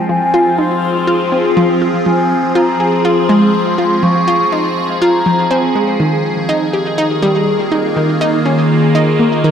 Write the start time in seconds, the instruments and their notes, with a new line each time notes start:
Already playing: ambient pad F3 C4 F4 G#4
0.09 synth arpeggio sound F3, flute G#5
0.34 synth arpeggio sound F4
0.58 synth arpeggio sound D#4, flute C6
1.07 synth arpeggio sound F4
1.32 synth arpeggio sound C4
1.57 synth arpeggio sound F3
1.82 synth arpeggio sound F4
2.06 synth arpeggio sound F3, flute G#5
2.55 synth arpeggio sound F4, flute A#5
2.80 synth arpeggio sound G#4
3.05 synth arpeggio sound F4, flute C6
3.29 synth arpeggio sound G#3
3.78 synth arpeggio sound F4
4.03 synth arpeggio sound F3, flute C#6
4.28 synth arpeggio sound F4
4.52 synth arpeggio sound D#4, flute C6
5.02 synth arpeggio sound F4, flute A#5
5.26 synth arpeggio sound F3
5.51 synth arpeggio sound C4, flute G#5
5.75 synth arpeggio sound G#3
6.00 ambient pad D#3, synth arpeggio sound D#3
6.49 ambient pad A#3, synth arpeggio sound D#4
6.73 synth arpeggio sound G4
6.92 ambient pad F4
6.98 synth arpeggio sound D#4
7.22 synth arpeggio sound G3
7.72 synth arpeggio sound D#4
7.96 synth arpeggio sound D#3
8.21 synth arpeggio sound D#4
8.46 synth arpeggio sound C#4
8.95 synth arpeggio sound D#4
9.19 synth arpeggio sound A#3
9.44 synth arpeggio sound D#3